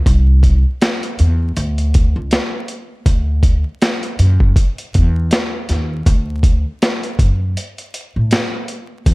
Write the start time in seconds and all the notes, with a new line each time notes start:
0.06 C2, kick, closed hi-hat
0.43 kick, closed hi-hat
0.82 snare, closed hi-hat
1.03 closed hi-hat
1.19 E2, closed hi-hat
1.57 D2, closed hi-hat
1.78 closed hi-hat
1.94 kick, closed hi-hat
2.16 C#2
2.31 snare, closed hi-hat
2.68 closed hi-hat
3.06 D2, kick, closed hi-hat
3.43 kick, closed hi-hat
3.82 snare, closed hi-hat
4.03 closed hi-hat
4.19 F#2, closed hi-hat
4.40 kick
4.56 kick, closed hi-hat
4.78 closed hi-hat
4.94 E2, kick, closed hi-hat
5.31 snare, closed hi-hat
5.69 D#2, snare, closed hi-hat
6.06 D2, kick, closed hi-hat
6.43 kick, closed hi-hat
6.82 snare, closed hi-hat
7.03 closed hi-hat
7.19 F#2, kick, closed hi-hat
7.57 closed hi-hat
7.78 closed hi-hat
7.94 closed hi-hat
8.16 A2
8.31 snare, closed hi-hat
8.68 closed hi-hat
9.06 E2, kick, closed hi-hat